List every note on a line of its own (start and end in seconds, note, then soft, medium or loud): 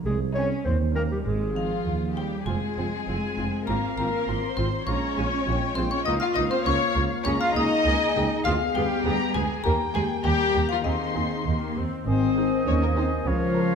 0.05 0.53 C2 medium
0.05 0.14 G#3 medium
0.05 0.19 G#4 medium
0.35 0.58 C4 medium
0.35 0.65 C#4 medium
0.35 0.57 D#4 medium
0.35 0.48 C#5 loud
0.35 0.58 G#5 medium
0.65 1.13 D#2 medium
0.65 0.73 C4 medium
0.65 0.78 C5 medium
0.95 1.02 A#3 medium
0.95 1.18 C#4 medium
0.95 1.18 D#4 medium
0.95 1.02 A#4 medium
0.95 1.19 G5 medium
1.11 1.26 G3 medium
1.11 1.18 G4 medium
1.25 1.74 G#1 medium
1.25 1.56 G#3 medium
1.25 2.15 G#4 medium
1.56 2.13 F3 medium
1.56 1.79 C4 medium
1.56 1.79 D#4 medium
1.56 2.13 F4 medium
1.56 2.13 F5 medium
1.56 1.79 G#5 medium
1.86 2.34 D#2 medium
1.86 2.35 D#2 medium
2.17 2.47 G3 medium
2.17 2.40 C4 soft
2.17 2.40 D#4 soft
2.17 2.47 G4 medium
2.17 2.45 G5 medium
2.17 2.39 G#5 medium
2.46 2.55 F1 medium
2.46 2.60 F1 medium
2.46 3.65 G#3 medium
2.46 2.55 C4 medium
2.46 4.83 C4 medium
2.46 2.55 F4 medium
2.46 4.83 F4 medium
2.46 3.65 G#4 medium
2.46 3.63 G#5 medium
2.77 2.85 F1 medium
2.77 2.90 F1 medium
2.77 2.85 C4 medium
2.77 2.85 F4 soft
3.07 3.16 F1 medium
3.07 3.20 F1 medium
3.07 3.16 C4 medium
3.07 3.16 F4 medium
3.07 3.63 G#5 medium
3.37 3.46 F1 medium
3.37 3.50 F1 medium
3.37 3.45 C4 medium
3.37 3.45 F4 soft
3.67 3.79 G#1 medium
3.67 3.76 G#1 medium
3.67 3.96 A#3 medium
3.67 3.76 C4 medium
3.67 3.76 F4 medium
3.67 3.96 A#4 medium
3.67 4.26 F5 medium
3.67 3.95 A#5 medium
3.97 4.06 G#1 medium
3.97 4.10 G#1 medium
3.97 4.56 A#3 medium
3.97 4.06 C4 medium
3.97 4.06 F4 medium
3.97 4.56 A#4 medium
3.97 4.53 A#5 medium
4.27 4.35 G#1 medium
4.27 4.40 G#1 medium
4.27 4.36 C4 medium
4.27 4.36 F4 medium
4.27 4.87 C6 medium
4.56 4.65 G#1 medium
4.56 4.70 G#1 medium
4.56 4.65 C4 medium
4.56 4.66 C4 medium
4.56 4.66 F4 medium
4.56 4.86 C5 medium
4.56 4.85 C6 medium
4.86 4.95 A#1 medium
4.86 4.99 A#1 medium
4.86 6.06 G#3 medium
4.86 4.95 G#3 medium
4.86 5.75 C#4 medium
4.86 7.22 F4 medium
4.86 4.95 F4 medium
4.86 5.75 C#5 medium
4.86 5.16 A#5 medium
4.86 5.72 C#6 medium
5.17 5.25 A#1 medium
5.17 5.29 A#1 medium
5.17 5.25 G#3 medium
5.17 5.25 F4 medium
5.17 5.25 G#5 medium
5.46 5.58 A#1 medium
5.46 5.55 A#1 medium
5.46 5.55 G#3 medium
5.46 5.55 F4 medium
5.46 6.05 G5 medium
5.75 5.89 A#1 medium
5.75 5.85 A#1 medium
5.75 5.85 G#3 medium
5.75 5.82 C4 medium
5.75 5.85 F4 medium
5.75 5.91 C5 medium
5.75 5.90 C6 medium
5.91 6.06 C#4 medium
5.91 6.06 C#5 medium
5.91 6.05 C#6 medium
6.05 6.18 C#2 medium
6.05 6.15 C#2 medium
6.05 6.14 A#3 medium
6.05 8.41 A#3 medium
6.05 6.13 D#4 loud
6.05 6.14 F4 medium
6.05 6.12 D#5 loud
6.05 7.25 F5 medium
6.05 6.20 D#6 medium
6.20 6.36 F4 medium
6.20 6.28 F5 medium
6.20 6.34 F6 medium
6.35 6.48 C#2 medium
6.35 6.45 C#2 medium
6.35 6.45 A#3 medium
6.35 6.42 D#4 medium
6.35 6.45 F4 medium
6.35 6.41 D#5 medium
6.35 6.50 D#6 medium
6.51 6.57 C4 medium
6.51 6.66 C5 medium
6.51 6.65 C6 medium
6.65 6.78 C#2 medium
6.65 6.74 C#2 medium
6.65 6.74 A#3 medium
6.65 6.73 C#4 medium
6.65 6.74 F4 medium
6.65 6.95 C#5 loud
6.65 6.94 C#6 medium
6.96 7.04 C#2 medium
6.96 7.08 C#2 medium
6.96 7.04 A#3 medium
6.96 7.04 F4 medium
7.24 7.38 C#2 medium
7.24 7.34 C#2 medium
7.24 7.34 A#3 medium
7.24 7.39 C#4 loud
7.24 7.34 G#4 medium
7.24 9.47 G#4 medium
7.24 7.31 C#5 loud
7.24 7.84 A#5 medium
7.24 7.39 C#6 loud
7.40 7.55 F4 loud
7.40 7.55 F5 loud
7.40 7.55 F6 medium
7.55 7.64 C#2 medium
7.55 7.68 C#2 medium
7.55 7.64 A#3 medium
7.55 8.43 D#4 medium
7.55 7.64 G#4 medium
7.55 8.43 D#5 loud
7.55 8.42 D#6 medium
7.85 7.93 C#2 medium
7.85 7.98 C#2 medium
7.85 7.93 A#3 medium
7.85 7.93 G#4 medium
7.85 8.16 G#5 medium
8.15 8.27 C#2 medium
8.15 8.24 C#2 medium
8.15 8.24 A#3 medium
8.15 8.24 G#4 medium
8.15 8.24 G5 medium
8.45 8.53 D2 medium
8.45 8.57 D2 medium
8.45 9.47 B3 medium
8.45 8.53 B3 medium
8.45 8.53 F4 loud
8.45 8.53 G#4 medium
8.45 8.53 F5 medium
8.45 9.04 F5 medium
8.45 8.73 F6 loud
8.75 8.87 D2 medium
8.75 8.83 D2 medium
8.75 9.33 G3 medium
8.75 8.83 B3 medium
8.75 9.33 G4 loud
8.75 8.83 G#4 medium
8.75 9.31 G5 medium
9.05 9.17 D2 medium
9.05 9.13 D2 medium
9.05 9.13 B3 medium
9.05 9.13 G#4 medium
9.05 9.34 A#5 loud
9.33 9.46 D2 medium
9.33 9.43 D2 medium
9.33 9.64 G#3 medium
9.33 9.42 B3 medium
9.33 9.64 G#4 medium
9.33 9.43 G#4 medium
9.33 9.62 G#5 medium
9.33 9.65 G#5 medium
9.63 9.76 D#2 medium
9.63 9.73 D#2 medium
9.63 9.72 A#3 medium
9.63 10.82 A#3 medium
9.63 9.72 A#3 medium
9.63 10.82 G4 medium
9.63 9.72 G4 medium
9.63 9.71 A#4 medium
9.63 10.23 G5 medium
9.63 9.92 A#5 medium
9.94 10.06 D#2 medium
9.94 10.02 D#2 medium
9.94 10.02 G#3 medium
9.94 10.02 A#3 medium
9.94 10.02 G4 medium
9.94 10.03 G#4 loud
9.94 10.23 G#5 medium
10.23 10.32 D#2 medium
10.23 10.37 D#2 medium
10.23 10.69 G3 medium
10.23 10.31 A#3 medium
10.23 10.31 G4 medium
10.23 10.69 G4 loud
10.23 10.66 G5 medium
10.23 10.85 A#5 medium
10.54 10.62 D#2 medium
10.54 10.67 D#2 medium
10.54 10.62 A#3 medium
10.54 10.62 G4 medium
10.69 10.85 F3 medium
10.69 10.86 F4 medium
10.69 10.83 F5 medium
10.84 10.92 D#2 medium
10.84 10.97 D#2 medium
10.84 11.74 D#3 medium
10.84 10.92 C4 medium
10.84 11.45 C4 medium
10.84 11.75 D#4 medium
10.84 10.92 G#4 medium
10.84 11.45 G#4 medium
10.84 11.72 D#5 medium
10.84 11.74 C6 medium
11.15 11.23 D#2 medium
11.15 11.28 D#2 medium
11.15 11.23 C4 medium
11.15 11.23 G#4 medium
11.45 11.54 D#2 medium
11.45 11.58 D#2 medium
11.45 11.76 A#3 medium
11.45 11.74 A#3 medium
11.45 11.76 G4 medium
11.76 11.84 D#2 medium
11.76 11.88 D#2 medium
11.76 12.07 C4 medium
12.06 12.54 G#1 medium
12.06 12.54 G#2 medium
12.06 13.28 D#3 medium
12.06 12.63 C4 medium
12.06 13.29 C5 medium
12.06 12.63 C5 medium
12.06 13.29 D#5 medium
12.06 13.23 G#5 medium
12.37 12.59 D#4 medium
12.37 12.59 G#4 medium
12.37 12.59 D#5 medium
12.66 13.14 D#2 medium
12.66 12.81 C#4 loud
12.66 12.73 C#5 medium
12.83 12.97 A#3 medium
12.83 12.89 A#4 medium
12.96 13.09 C4 medium
12.96 13.19 D#4 medium
12.96 13.19 G#4 medium
12.96 13.05 C5 medium
12.96 13.19 D#5 medium
13.26 13.73 C#2 medium
13.26 13.74 C#2 medium
13.26 13.74 C#3 medium
13.26 13.75 F3 medium
13.26 13.75 F4 medium
13.26 13.75 A#4 medium
13.26 13.75 C#5 medium
13.26 13.75 F5 medium
13.56 13.75 F4 medium
13.56 13.75 A#4 medium
13.56 13.75 C#5 medium